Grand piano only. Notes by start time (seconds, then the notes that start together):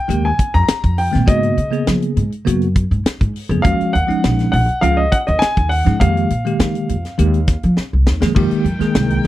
Already playing: G5
0.25 G#5
0.54 A#5
0.98 G5
1.28 D#5
3.62 F5
3.93 F#5
4.52 F#5
4.81 F5
4.97 D#5
5.12 F#5
5.27 D#5
5.39 G#5
5.69 F#5
6.00 F5